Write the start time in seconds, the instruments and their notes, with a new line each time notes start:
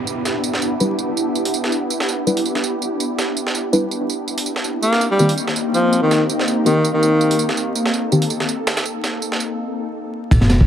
Already playing: ambient pad B3 D4 E4 G4, downlifter
0.07 tambourine
0.25 snare, tambourine
0.44 tambourine
0.54 snare
0.62 tambourine
0.80 synth stab G3 D4 E4 B4, tambourine
0.99 tambourine
1.17 tambourine
1.35 tambourine
1.45 closed hi-hat
1.54 tambourine
1.64 snare
1.72 tambourine
1.90 tambourine
2.00 snare
2.09 tambourine
2.27 synth stab G3 D4 E4 B4, tambourine
2.37 closed hi-hat
2.46 tambourine
2.55 snare
2.64 tambourine
2.82 tambourine
3.00 tambourine
3.18 snare, tambourine
3.37 tambourine
3.47 snare
3.55 tambourine
3.73 synth stab G3 D4 E4 B4, tambourine
3.91 tambourine
4.10 tambourine
4.28 tambourine
4.38 closed hi-hat
4.46 ambient pad A#3 C4 D#4 G4, tambourine
4.56 snare
4.64 tambourine
4.82 tenor saxophone A#3, tambourine
4.93 snare
5.01 tambourine
5.11 tenor saxophone G3
5.19 synth stab D#3 A#3 C4 G4, tambourine
5.29 closed hi-hat
5.38 tambourine
5.48 snare
5.56 tambourine
5.74 tenor saxophone F3, tambourine
5.93 tambourine
6.02 tenor saxophone D#3
6.11 snare, tambourine
6.29 tambourine
6.39 snare
6.48 tambourine
6.66 synth stab D#3 A#3 C4 G4, tenor saxophone D#3, tambourine
6.84 tambourine
6.94 tenor saxophone D#3
7.03 tambourine
7.21 tambourine
7.31 closed hi-hat
7.39 ambient pad A4, tambourine
7.49 snare
7.57 tambourine
7.75 tambourine
7.86 snare
7.94 tambourine
8.12 synth stab D#3 A#3 C4 G4, tambourine
8.22 closed hi-hat
8.30 tambourine
8.40 snare
8.49 tambourine
8.67 snare, tambourine
8.77 snare, tambourine
8.85 tambourine
9.04 snare, tambourine
9.22 tambourine
9.32 snare
9.40 tambourine
10.31 808-style bass E1, ambient pad B3 D4 E4 G4, kick, ride, tambourine, sub drop
10.41 snare
10.49 snare, ride, tambourine
10.61 kick